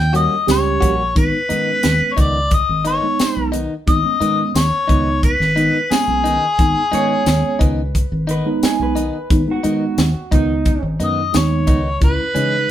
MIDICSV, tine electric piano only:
0, 0, Header, 1, 2, 480
1, 0, Start_track
1, 0, Key_signature, 5, "minor"
1, 0, Tempo, 678733
1, 816, Time_signature, 4, 2, 24, 8
1, 8987, End_track
2, 0, Start_track
2, 0, Title_t, "Tine electric piano"
2, 0, Program_c, 0, 4
2, 92, Note_on_c, 0, 55, 68
2, 94, Note_on_c, 0, 61, 61
2, 99, Note_on_c, 0, 66, 76
2, 250, Note_off_c, 0, 55, 0
2, 251, Note_off_c, 0, 61, 0
2, 253, Note_off_c, 0, 66, 0
2, 332, Note_on_c, 0, 55, 102
2, 334, Note_on_c, 0, 61, 88
2, 335, Note_on_c, 0, 67, 112
2, 644, Note_off_c, 0, 55, 0
2, 645, Note_off_c, 0, 61, 0
2, 646, Note_off_c, 0, 67, 0
2, 814, Note_on_c, 0, 56, 70
2, 815, Note_on_c, 0, 63, 69
2, 816, Note_on_c, 0, 59, 62
2, 970, Note_off_c, 0, 56, 0
2, 971, Note_off_c, 0, 59, 0
2, 971, Note_off_c, 0, 63, 0
2, 1055, Note_on_c, 0, 56, 69
2, 1057, Note_on_c, 0, 59, 55
2, 1058, Note_on_c, 0, 61, 70
2, 1676, Note_off_c, 0, 56, 0
2, 1677, Note_off_c, 0, 59, 0
2, 1677, Note_off_c, 0, 61, 0
2, 2140, Note_on_c, 0, 56, 81
2, 2141, Note_on_c, 0, 59, 68
2, 2144, Note_on_c, 0, 63, 89
2, 2525, Note_off_c, 0, 56, 0
2, 2525, Note_off_c, 0, 59, 0
2, 2527, Note_off_c, 0, 63, 0
2, 2734, Note_on_c, 0, 56, 75
2, 2736, Note_on_c, 0, 59, 71
2, 2738, Note_on_c, 0, 63, 74
2, 2813, Note_off_c, 0, 56, 0
2, 2814, Note_off_c, 0, 59, 0
2, 2815, Note_off_c, 0, 63, 0
2, 2853, Note_on_c, 0, 56, 67
2, 2856, Note_on_c, 0, 61, 79
2, 2857, Note_on_c, 0, 59, 64
2, 2932, Note_off_c, 0, 56, 0
2, 2933, Note_off_c, 0, 61, 0
2, 2934, Note_off_c, 0, 59, 0
2, 2977, Note_on_c, 0, 56, 67
2, 2978, Note_on_c, 0, 59, 65
2, 2982, Note_on_c, 0, 61, 79
2, 3287, Note_off_c, 0, 56, 0
2, 3287, Note_off_c, 0, 59, 0
2, 3289, Note_off_c, 0, 61, 0
2, 3453, Note_on_c, 0, 56, 71
2, 3455, Note_on_c, 0, 59, 62
2, 3458, Note_on_c, 0, 63, 78
2, 3765, Note_off_c, 0, 56, 0
2, 3766, Note_off_c, 0, 59, 0
2, 3767, Note_off_c, 0, 63, 0
2, 3935, Note_on_c, 0, 56, 64
2, 3935, Note_on_c, 0, 59, 58
2, 3938, Note_on_c, 0, 63, 77
2, 4091, Note_off_c, 0, 56, 0
2, 4091, Note_off_c, 0, 59, 0
2, 4093, Note_off_c, 0, 63, 0
2, 4174, Note_on_c, 0, 56, 77
2, 4175, Note_on_c, 0, 59, 77
2, 4178, Note_on_c, 0, 61, 84
2, 4485, Note_off_c, 0, 56, 0
2, 4486, Note_off_c, 0, 59, 0
2, 4487, Note_off_c, 0, 61, 0
2, 4657, Note_on_c, 0, 56, 62
2, 4659, Note_on_c, 0, 59, 60
2, 4661, Note_on_c, 0, 63, 69
2, 4812, Note_off_c, 0, 56, 0
2, 4813, Note_off_c, 0, 59, 0
2, 4814, Note_off_c, 0, 63, 0
2, 4898, Note_on_c, 0, 56, 83
2, 4901, Note_on_c, 0, 59, 76
2, 4901, Note_on_c, 0, 61, 92
2, 5517, Note_off_c, 0, 56, 0
2, 5519, Note_off_c, 0, 59, 0
2, 5519, Note_off_c, 0, 61, 0
2, 5982, Note_on_c, 0, 56, 100
2, 5982, Note_on_c, 0, 59, 90
2, 5983, Note_on_c, 0, 63, 108
2, 6366, Note_off_c, 0, 59, 0
2, 6367, Note_off_c, 0, 56, 0
2, 6367, Note_off_c, 0, 63, 0
2, 6580, Note_on_c, 0, 59, 81
2, 6581, Note_on_c, 0, 56, 79
2, 6584, Note_on_c, 0, 63, 94
2, 6656, Note_off_c, 0, 59, 0
2, 6657, Note_off_c, 0, 56, 0
2, 6658, Note_off_c, 0, 63, 0
2, 6697, Note_on_c, 0, 56, 80
2, 6699, Note_on_c, 0, 59, 68
2, 6702, Note_on_c, 0, 63, 88
2, 6775, Note_off_c, 0, 56, 0
2, 6776, Note_off_c, 0, 59, 0
2, 6777, Note_off_c, 0, 63, 0
2, 6817, Note_on_c, 0, 56, 77
2, 6820, Note_on_c, 0, 63, 88
2, 6821, Note_on_c, 0, 59, 68
2, 7127, Note_off_c, 0, 56, 0
2, 7129, Note_off_c, 0, 59, 0
2, 7129, Note_off_c, 0, 63, 0
2, 7291, Note_on_c, 0, 56, 79
2, 7294, Note_on_c, 0, 59, 75
2, 7298, Note_on_c, 0, 63, 95
2, 7605, Note_off_c, 0, 56, 0
2, 7606, Note_off_c, 0, 59, 0
2, 7608, Note_off_c, 0, 63, 0
2, 7775, Note_on_c, 0, 56, 61
2, 7777, Note_on_c, 0, 59, 56
2, 7780, Note_on_c, 0, 63, 66
2, 7932, Note_off_c, 0, 56, 0
2, 7932, Note_off_c, 0, 59, 0
2, 7934, Note_off_c, 0, 63, 0
2, 8009, Note_on_c, 0, 56, 75
2, 8012, Note_on_c, 0, 59, 61
2, 8013, Note_on_c, 0, 63, 76
2, 8323, Note_off_c, 0, 56, 0
2, 8325, Note_off_c, 0, 59, 0
2, 8326, Note_off_c, 0, 63, 0
2, 8490, Note_on_c, 0, 56, 65
2, 8493, Note_on_c, 0, 61, 61
2, 8495, Note_on_c, 0, 64, 78
2, 8649, Note_off_c, 0, 56, 0
2, 8651, Note_off_c, 0, 61, 0
2, 8652, Note_off_c, 0, 64, 0
2, 8728, Note_on_c, 0, 56, 68
2, 8730, Note_on_c, 0, 61, 61
2, 8734, Note_on_c, 0, 63, 76
2, 8987, Note_off_c, 0, 56, 0
2, 8987, Note_off_c, 0, 61, 0
2, 8987, Note_off_c, 0, 63, 0
2, 8987, End_track
0, 0, End_of_file